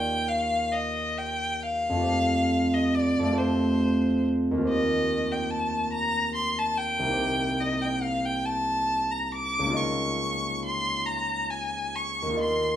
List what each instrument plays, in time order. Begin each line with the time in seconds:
Already playing: harp D#2 A#3 F4 G4 D5 D#5, violin G5
0.29 violin F5
0.73 violin D#5
1.18 violin G5
1.63 violin F5
1.89 harp F2 A3
1.97 harp F4 G4
2.04 harp C5
2.74 violin D#5
2.95 violin D5
3.19 harp F2 A3
3.27 harp F4 G4
3.34 harp C5
3.38 violin C5
4.51 harp D#2 A#3
4.58 harp F4
4.62 harp G4 C5
4.69 violin D#5
5.32 violin G5
5.51 violin A5
5.93 violin A#5
6.35 violin C6
6.58 violin A5
6.78 violin G5
6.99 harp C2 A#3
7.06 harp D#4 G4
7.13 harp C5
7.61 violin D#5
7.82 violin G5
8.02 violin F5
8.25 violin G5
8.46 violin A5
9.11 violin A#5
9.32 violin D6
9.59 harp C#2 A#3
9.66 harp D#4 F4
9.73 harp D#5, violin C#6
10.65 violin C6
11.06 violin A#5
11.50 violin G#5
11.96 violin C#6
12.22 harp D#2 A#3
12.30 harp D#4 F4
12.36 harp D#5
12.41 violin C6